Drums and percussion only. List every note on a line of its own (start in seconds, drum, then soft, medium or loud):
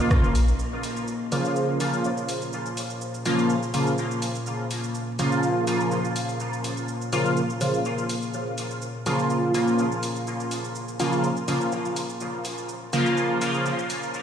0.11 kick loud
0.11 cross-stick medium
0.11 shaker soft
0.24 shaker soft
0.35 open hi-hat medium
0.35 shaker medium
0.48 shaker soft
0.59 shaker soft
0.83 open hi-hat medium
0.83 shaker medium
0.97 shaker soft
1.08 shaker soft
1.32 open hi-hat medium
1.32 shaker medium
1.45 shaker soft
1.56 shaker soft
1.80 open hi-hat medium
1.80 shaker medium
1.93 shaker soft
2.04 shaker soft
2.18 shaker soft
2.29 open hi-hat medium
2.29 shaker medium
2.42 shaker soft
2.53 shaker soft
2.66 shaker soft
2.77 open hi-hat medium
2.77 shaker medium
2.90 shaker soft
3.01 shaker soft
3.14 shaker soft
3.25 open hi-hat medium
3.25 shaker medium
3.39 shaker soft
3.50 shaker soft
3.63 shaker soft
3.74 open hi-hat medium
3.74 shaker medium
3.87 shaker soft
3.98 shaker soft
4.11 shaker soft
4.22 open hi-hat medium
4.22 shaker medium
4.35 shaker soft
4.46 shaker soft
4.71 open hi-hat medium
4.71 shaker medium
4.84 shaker soft
4.95 shaker soft
5.19 open hi-hat medium
5.19 shaker medium
5.32 shaker soft
5.43 shaker soft
5.67 open hi-hat medium
5.67 shaker medium
5.80 shaker soft
5.92 shaker soft
6.05 shaker soft
6.16 open hi-hat medium
6.16 shaker medium
6.29 shaker soft
6.40 shaker soft
6.53 shaker soft
6.64 open hi-hat medium
6.64 shaker medium
6.77 shaker soft
6.88 shaker soft
7.02 shaker soft
7.13 open hi-hat medium
7.13 shaker medium
7.26 shaker soft
7.37 shaker soft
7.50 shaker soft
7.61 open hi-hat medium
7.61 shaker medium
7.74 shaker soft
7.85 shaker soft
7.98 shaker soft
8.09 open hi-hat medium
8.09 shaker medium
8.23 shaker soft
8.34 shaker soft
8.58 open hi-hat medium
8.58 shaker medium
8.71 shaker soft
8.82 shaker soft
9.06 open hi-hat medium
9.06 shaker medium
9.19 shaker soft
9.30 shaker soft
9.54 open hi-hat medium
9.54 shaker medium
9.68 shaker soft
9.79 shaker soft
9.92 shaker soft
10.03 open hi-hat medium
10.03 shaker medium
10.16 shaker soft
10.27 shaker soft
10.40 shaker soft
10.51 open hi-hat medium
10.51 shaker medium
10.64 shaker soft
10.75 shaker soft
10.88 shaker soft
11.00 open hi-hat medium
11.00 shaker medium
11.13 shaker soft
11.24 shaker soft
11.37 shaker soft
11.48 open hi-hat medium
11.48 shaker medium
11.61 shaker soft
11.72 shaker soft
11.85 shaker soft
11.96 open hi-hat medium
11.96 shaker medium
12.09 shaker soft
12.21 shaker soft
12.45 open hi-hat medium
12.45 shaker medium
12.58 shaker soft
12.69 shaker soft
12.93 open hi-hat medium
12.93 shaker medium
13.06 shaker soft
13.17 shaker soft
13.41 open hi-hat medium
13.41 shaker medium
13.55 shaker soft
13.66 shaker soft
13.79 shaker soft
13.90 open hi-hat medium
13.90 shaker medium
14.03 shaker soft
14.14 shaker soft